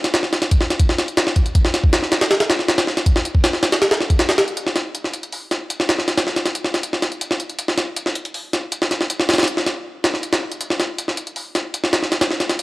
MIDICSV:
0, 0, Header, 1, 2, 480
1, 0, Start_track
1, 0, Tempo, 377358
1, 52, Time_signature, 4, 2, 24, 8
1, 16060, End_track
2, 0, Start_track
2, 0, Title_t, "Drums"
2, 54, Note_on_c, 9, 38, 55
2, 54, Note_on_c, 9, 42, 65
2, 176, Note_off_c, 9, 38, 0
2, 176, Note_off_c, 9, 42, 0
2, 176, Note_on_c, 9, 38, 110
2, 176, Note_on_c, 9, 42, 85
2, 293, Note_off_c, 9, 38, 0
2, 293, Note_on_c, 9, 38, 43
2, 303, Note_off_c, 9, 42, 0
2, 416, Note_off_c, 9, 38, 0
2, 416, Note_on_c, 9, 38, 52
2, 416, Note_on_c, 9, 42, 66
2, 532, Note_off_c, 9, 38, 0
2, 532, Note_off_c, 9, 42, 0
2, 532, Note_on_c, 9, 38, 52
2, 532, Note_on_c, 9, 42, 60
2, 653, Note_off_c, 9, 42, 0
2, 653, Note_on_c, 9, 42, 83
2, 655, Note_on_c, 9, 36, 104
2, 659, Note_off_c, 9, 38, 0
2, 771, Note_on_c, 9, 38, 46
2, 781, Note_off_c, 9, 42, 0
2, 782, Note_off_c, 9, 36, 0
2, 895, Note_off_c, 9, 38, 0
2, 895, Note_on_c, 9, 38, 51
2, 895, Note_on_c, 9, 42, 66
2, 1011, Note_off_c, 9, 42, 0
2, 1011, Note_on_c, 9, 42, 84
2, 1012, Note_on_c, 9, 36, 100
2, 1022, Note_off_c, 9, 38, 0
2, 1134, Note_on_c, 9, 38, 50
2, 1138, Note_off_c, 9, 42, 0
2, 1139, Note_off_c, 9, 36, 0
2, 1252, Note_off_c, 9, 38, 0
2, 1252, Note_on_c, 9, 38, 54
2, 1252, Note_on_c, 9, 42, 65
2, 1375, Note_off_c, 9, 42, 0
2, 1375, Note_on_c, 9, 42, 47
2, 1379, Note_off_c, 9, 38, 0
2, 1491, Note_off_c, 9, 42, 0
2, 1491, Note_on_c, 9, 38, 121
2, 1491, Note_on_c, 9, 42, 93
2, 1614, Note_off_c, 9, 38, 0
2, 1614, Note_on_c, 9, 38, 58
2, 1618, Note_off_c, 9, 42, 0
2, 1730, Note_on_c, 9, 42, 71
2, 1732, Note_on_c, 9, 36, 95
2, 1741, Note_off_c, 9, 38, 0
2, 1854, Note_off_c, 9, 42, 0
2, 1854, Note_on_c, 9, 42, 46
2, 1859, Note_off_c, 9, 36, 0
2, 1972, Note_off_c, 9, 42, 0
2, 1972, Note_on_c, 9, 36, 114
2, 1972, Note_on_c, 9, 42, 92
2, 2095, Note_on_c, 9, 38, 53
2, 2099, Note_off_c, 9, 36, 0
2, 2099, Note_off_c, 9, 42, 0
2, 2212, Note_off_c, 9, 38, 0
2, 2212, Note_on_c, 9, 38, 55
2, 2212, Note_on_c, 9, 42, 75
2, 2336, Note_on_c, 9, 36, 100
2, 2339, Note_off_c, 9, 38, 0
2, 2339, Note_off_c, 9, 42, 0
2, 2453, Note_on_c, 9, 38, 119
2, 2453, Note_on_c, 9, 42, 92
2, 2463, Note_off_c, 9, 36, 0
2, 2578, Note_off_c, 9, 38, 0
2, 2578, Note_on_c, 9, 38, 38
2, 2581, Note_off_c, 9, 42, 0
2, 2694, Note_off_c, 9, 38, 0
2, 2694, Note_on_c, 9, 38, 108
2, 2694, Note_on_c, 9, 42, 83
2, 2815, Note_off_c, 9, 38, 0
2, 2815, Note_off_c, 9, 42, 0
2, 2815, Note_on_c, 9, 38, 107
2, 2815, Note_on_c, 9, 42, 81
2, 2934, Note_off_c, 9, 38, 0
2, 2934, Note_off_c, 9, 42, 0
2, 2934, Note_on_c, 9, 38, 111
2, 2934, Note_on_c, 9, 42, 82
2, 3056, Note_off_c, 9, 38, 0
2, 3056, Note_off_c, 9, 42, 0
2, 3056, Note_on_c, 9, 38, 107
2, 3056, Note_on_c, 9, 42, 79
2, 3176, Note_off_c, 9, 38, 0
2, 3176, Note_off_c, 9, 42, 0
2, 3176, Note_on_c, 9, 38, 112
2, 3176, Note_on_c, 9, 42, 82
2, 3297, Note_off_c, 9, 38, 0
2, 3297, Note_on_c, 9, 38, 42
2, 3303, Note_off_c, 9, 42, 0
2, 3414, Note_off_c, 9, 38, 0
2, 3414, Note_on_c, 9, 38, 112
2, 3414, Note_on_c, 9, 42, 80
2, 3536, Note_off_c, 9, 38, 0
2, 3536, Note_off_c, 9, 42, 0
2, 3536, Note_on_c, 9, 38, 110
2, 3536, Note_on_c, 9, 42, 82
2, 3655, Note_off_c, 9, 38, 0
2, 3655, Note_on_c, 9, 38, 42
2, 3663, Note_off_c, 9, 42, 0
2, 3779, Note_off_c, 9, 38, 0
2, 3779, Note_on_c, 9, 38, 55
2, 3779, Note_on_c, 9, 42, 64
2, 3894, Note_on_c, 9, 36, 110
2, 3895, Note_off_c, 9, 42, 0
2, 3895, Note_on_c, 9, 42, 90
2, 3906, Note_off_c, 9, 38, 0
2, 4018, Note_on_c, 9, 38, 59
2, 4022, Note_off_c, 9, 36, 0
2, 4022, Note_off_c, 9, 42, 0
2, 4136, Note_on_c, 9, 42, 70
2, 4145, Note_off_c, 9, 38, 0
2, 4257, Note_on_c, 9, 36, 98
2, 4263, Note_off_c, 9, 42, 0
2, 4374, Note_on_c, 9, 38, 125
2, 4374, Note_on_c, 9, 42, 92
2, 4384, Note_off_c, 9, 36, 0
2, 4495, Note_off_c, 9, 38, 0
2, 4495, Note_on_c, 9, 38, 46
2, 4501, Note_off_c, 9, 42, 0
2, 4614, Note_off_c, 9, 38, 0
2, 4614, Note_on_c, 9, 38, 109
2, 4614, Note_on_c, 9, 42, 82
2, 4736, Note_off_c, 9, 38, 0
2, 4736, Note_off_c, 9, 42, 0
2, 4736, Note_on_c, 9, 38, 107
2, 4736, Note_on_c, 9, 42, 83
2, 4855, Note_off_c, 9, 38, 0
2, 4855, Note_off_c, 9, 42, 0
2, 4855, Note_on_c, 9, 38, 108
2, 4855, Note_on_c, 9, 42, 82
2, 4975, Note_off_c, 9, 38, 0
2, 4975, Note_off_c, 9, 42, 0
2, 4975, Note_on_c, 9, 38, 102
2, 4975, Note_on_c, 9, 42, 79
2, 5094, Note_off_c, 9, 38, 0
2, 5094, Note_on_c, 9, 38, 52
2, 5103, Note_off_c, 9, 42, 0
2, 5215, Note_on_c, 9, 42, 64
2, 5216, Note_on_c, 9, 36, 90
2, 5221, Note_off_c, 9, 38, 0
2, 5331, Note_off_c, 9, 42, 0
2, 5331, Note_on_c, 9, 38, 111
2, 5331, Note_on_c, 9, 42, 86
2, 5343, Note_off_c, 9, 36, 0
2, 5454, Note_off_c, 9, 38, 0
2, 5454, Note_off_c, 9, 42, 0
2, 5454, Note_on_c, 9, 38, 107
2, 5454, Note_on_c, 9, 42, 80
2, 5572, Note_off_c, 9, 38, 0
2, 5572, Note_off_c, 9, 42, 0
2, 5572, Note_on_c, 9, 38, 108
2, 5572, Note_on_c, 9, 42, 83
2, 5696, Note_off_c, 9, 42, 0
2, 5696, Note_on_c, 9, 42, 47
2, 5699, Note_off_c, 9, 38, 0
2, 5813, Note_off_c, 9, 42, 0
2, 5813, Note_on_c, 9, 42, 85
2, 5935, Note_on_c, 9, 38, 49
2, 5940, Note_off_c, 9, 42, 0
2, 6050, Note_off_c, 9, 38, 0
2, 6050, Note_on_c, 9, 38, 52
2, 6050, Note_on_c, 9, 42, 62
2, 6177, Note_off_c, 9, 38, 0
2, 6177, Note_off_c, 9, 42, 0
2, 6292, Note_on_c, 9, 42, 83
2, 6416, Note_on_c, 9, 38, 34
2, 6419, Note_off_c, 9, 42, 0
2, 6531, Note_on_c, 9, 42, 62
2, 6543, Note_off_c, 9, 38, 0
2, 6654, Note_off_c, 9, 42, 0
2, 6654, Note_on_c, 9, 42, 41
2, 6773, Note_on_c, 9, 46, 76
2, 6781, Note_off_c, 9, 42, 0
2, 6900, Note_off_c, 9, 46, 0
2, 7011, Note_on_c, 9, 38, 44
2, 7011, Note_on_c, 9, 42, 65
2, 7138, Note_off_c, 9, 38, 0
2, 7138, Note_off_c, 9, 42, 0
2, 7252, Note_on_c, 9, 42, 83
2, 7376, Note_on_c, 9, 38, 52
2, 7380, Note_off_c, 9, 42, 0
2, 7492, Note_off_c, 9, 38, 0
2, 7492, Note_on_c, 9, 38, 99
2, 7492, Note_on_c, 9, 42, 72
2, 7614, Note_off_c, 9, 38, 0
2, 7614, Note_on_c, 9, 38, 40
2, 7619, Note_off_c, 9, 42, 0
2, 7731, Note_off_c, 9, 38, 0
2, 7731, Note_on_c, 9, 38, 49
2, 7731, Note_on_c, 9, 42, 58
2, 7855, Note_off_c, 9, 38, 0
2, 7855, Note_off_c, 9, 42, 0
2, 7855, Note_on_c, 9, 38, 98
2, 7855, Note_on_c, 9, 42, 73
2, 7973, Note_off_c, 9, 38, 0
2, 7973, Note_on_c, 9, 38, 38
2, 7982, Note_off_c, 9, 42, 0
2, 8095, Note_off_c, 9, 38, 0
2, 8095, Note_on_c, 9, 38, 47
2, 8095, Note_on_c, 9, 42, 56
2, 8212, Note_off_c, 9, 38, 0
2, 8212, Note_off_c, 9, 42, 0
2, 8212, Note_on_c, 9, 38, 44
2, 8212, Note_on_c, 9, 42, 57
2, 8334, Note_off_c, 9, 42, 0
2, 8334, Note_on_c, 9, 42, 77
2, 8339, Note_off_c, 9, 38, 0
2, 8454, Note_on_c, 9, 38, 44
2, 8461, Note_off_c, 9, 42, 0
2, 8576, Note_off_c, 9, 38, 0
2, 8576, Note_on_c, 9, 38, 46
2, 8576, Note_on_c, 9, 42, 57
2, 8693, Note_off_c, 9, 42, 0
2, 8693, Note_on_c, 9, 42, 75
2, 8703, Note_off_c, 9, 38, 0
2, 8818, Note_on_c, 9, 38, 43
2, 8820, Note_off_c, 9, 42, 0
2, 8935, Note_off_c, 9, 38, 0
2, 8935, Note_on_c, 9, 38, 46
2, 8935, Note_on_c, 9, 42, 60
2, 9056, Note_off_c, 9, 42, 0
2, 9056, Note_on_c, 9, 42, 40
2, 9062, Note_off_c, 9, 38, 0
2, 9175, Note_off_c, 9, 42, 0
2, 9175, Note_on_c, 9, 42, 81
2, 9297, Note_on_c, 9, 38, 51
2, 9302, Note_off_c, 9, 42, 0
2, 9412, Note_on_c, 9, 42, 65
2, 9424, Note_off_c, 9, 38, 0
2, 9535, Note_off_c, 9, 42, 0
2, 9535, Note_on_c, 9, 42, 41
2, 9651, Note_off_c, 9, 42, 0
2, 9651, Note_on_c, 9, 42, 80
2, 9774, Note_on_c, 9, 38, 47
2, 9778, Note_off_c, 9, 42, 0
2, 9891, Note_off_c, 9, 38, 0
2, 9891, Note_on_c, 9, 38, 52
2, 9891, Note_on_c, 9, 42, 63
2, 10019, Note_off_c, 9, 38, 0
2, 10019, Note_off_c, 9, 42, 0
2, 10131, Note_on_c, 9, 42, 77
2, 10253, Note_on_c, 9, 38, 37
2, 10259, Note_off_c, 9, 42, 0
2, 10372, Note_on_c, 9, 42, 61
2, 10380, Note_off_c, 9, 38, 0
2, 10495, Note_off_c, 9, 42, 0
2, 10495, Note_on_c, 9, 42, 41
2, 10611, Note_on_c, 9, 46, 78
2, 10622, Note_off_c, 9, 42, 0
2, 10739, Note_off_c, 9, 46, 0
2, 10853, Note_on_c, 9, 38, 46
2, 10853, Note_on_c, 9, 42, 68
2, 10981, Note_off_c, 9, 38, 0
2, 10981, Note_off_c, 9, 42, 0
2, 11091, Note_on_c, 9, 42, 83
2, 11216, Note_on_c, 9, 38, 51
2, 11218, Note_off_c, 9, 42, 0
2, 11333, Note_off_c, 9, 38, 0
2, 11333, Note_on_c, 9, 38, 37
2, 11333, Note_on_c, 9, 42, 61
2, 11456, Note_off_c, 9, 38, 0
2, 11456, Note_on_c, 9, 38, 43
2, 11460, Note_off_c, 9, 42, 0
2, 11574, Note_on_c, 9, 42, 83
2, 11583, Note_off_c, 9, 38, 0
2, 11696, Note_on_c, 9, 38, 52
2, 11701, Note_off_c, 9, 42, 0
2, 11814, Note_off_c, 9, 38, 0
2, 11814, Note_on_c, 9, 38, 84
2, 11814, Note_on_c, 9, 42, 66
2, 11874, Note_off_c, 9, 38, 0
2, 11874, Note_off_c, 9, 42, 0
2, 11874, Note_on_c, 9, 38, 86
2, 11874, Note_on_c, 9, 42, 64
2, 11935, Note_off_c, 9, 38, 0
2, 11935, Note_off_c, 9, 42, 0
2, 11935, Note_on_c, 9, 38, 81
2, 11935, Note_on_c, 9, 42, 64
2, 11993, Note_off_c, 9, 38, 0
2, 11993, Note_off_c, 9, 42, 0
2, 11993, Note_on_c, 9, 38, 83
2, 11993, Note_on_c, 9, 42, 65
2, 12052, Note_off_c, 9, 42, 0
2, 12052, Note_on_c, 9, 42, 82
2, 12121, Note_off_c, 9, 38, 0
2, 12174, Note_on_c, 9, 38, 42
2, 12180, Note_off_c, 9, 42, 0
2, 12293, Note_off_c, 9, 38, 0
2, 12293, Note_on_c, 9, 38, 52
2, 12293, Note_on_c, 9, 42, 60
2, 12420, Note_off_c, 9, 38, 0
2, 12420, Note_off_c, 9, 42, 0
2, 12771, Note_on_c, 9, 38, 101
2, 12771, Note_on_c, 9, 42, 74
2, 12896, Note_off_c, 9, 38, 0
2, 12896, Note_on_c, 9, 38, 32
2, 12898, Note_off_c, 9, 42, 0
2, 13013, Note_on_c, 9, 42, 57
2, 13023, Note_off_c, 9, 38, 0
2, 13135, Note_off_c, 9, 42, 0
2, 13135, Note_on_c, 9, 38, 99
2, 13135, Note_on_c, 9, 42, 76
2, 13262, Note_off_c, 9, 38, 0
2, 13262, Note_off_c, 9, 42, 0
2, 13376, Note_on_c, 9, 42, 59
2, 13492, Note_off_c, 9, 42, 0
2, 13492, Note_on_c, 9, 42, 86
2, 13615, Note_on_c, 9, 38, 50
2, 13619, Note_off_c, 9, 42, 0
2, 13733, Note_off_c, 9, 38, 0
2, 13733, Note_on_c, 9, 38, 52
2, 13733, Note_on_c, 9, 42, 63
2, 13860, Note_off_c, 9, 38, 0
2, 13860, Note_off_c, 9, 42, 0
2, 13972, Note_on_c, 9, 42, 81
2, 14095, Note_on_c, 9, 38, 36
2, 14100, Note_off_c, 9, 42, 0
2, 14211, Note_on_c, 9, 42, 63
2, 14222, Note_off_c, 9, 38, 0
2, 14334, Note_off_c, 9, 42, 0
2, 14334, Note_on_c, 9, 42, 41
2, 14449, Note_on_c, 9, 46, 75
2, 14461, Note_off_c, 9, 42, 0
2, 14576, Note_off_c, 9, 46, 0
2, 14691, Note_on_c, 9, 38, 46
2, 14691, Note_on_c, 9, 42, 65
2, 14818, Note_off_c, 9, 38, 0
2, 14818, Note_off_c, 9, 42, 0
2, 14932, Note_on_c, 9, 42, 81
2, 15055, Note_on_c, 9, 38, 52
2, 15059, Note_off_c, 9, 42, 0
2, 15173, Note_off_c, 9, 38, 0
2, 15173, Note_on_c, 9, 38, 95
2, 15173, Note_on_c, 9, 42, 75
2, 15296, Note_off_c, 9, 38, 0
2, 15296, Note_on_c, 9, 38, 42
2, 15300, Note_off_c, 9, 42, 0
2, 15413, Note_off_c, 9, 38, 0
2, 15413, Note_on_c, 9, 38, 50
2, 15413, Note_on_c, 9, 42, 58
2, 15533, Note_off_c, 9, 38, 0
2, 15533, Note_off_c, 9, 42, 0
2, 15533, Note_on_c, 9, 38, 104
2, 15533, Note_on_c, 9, 42, 76
2, 15652, Note_off_c, 9, 38, 0
2, 15652, Note_on_c, 9, 38, 39
2, 15660, Note_off_c, 9, 42, 0
2, 15774, Note_off_c, 9, 38, 0
2, 15774, Note_on_c, 9, 38, 50
2, 15774, Note_on_c, 9, 42, 59
2, 15892, Note_off_c, 9, 38, 0
2, 15892, Note_off_c, 9, 42, 0
2, 15892, Note_on_c, 9, 38, 46
2, 15892, Note_on_c, 9, 42, 59
2, 16015, Note_off_c, 9, 42, 0
2, 16015, Note_on_c, 9, 42, 76
2, 16019, Note_off_c, 9, 38, 0
2, 16060, Note_off_c, 9, 42, 0
2, 16060, End_track
0, 0, End_of_file